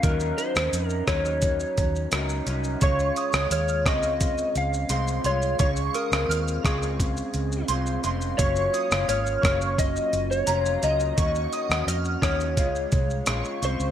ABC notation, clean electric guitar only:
X:1
M:4/4
L:1/16
Q:1/4=86
K:Db
V:1 name="Clean electric guitar"
[E,G,DEB]3 [DEB]3 [G,DEB]6 [G,DEB]2 [G,DEB]2 | [D,A,F]3 [A,F]3 [D,A,CF]6 [A,CF]2 [A,F]2 | [D,A,F]3 [A,CF]3 [D,A,CF]6 [A,CF]2 [D,A,CF]2 | [G,B,DF]3 [B,DF]3 [G,B,DF]6 [G,B,DF]2 [G,B,DF]2 |
[E,B,DG]3 [B,DG]3 [E,B,DG]2 [A,F]4 [D,A,F]2 [D,A,CF]2 |]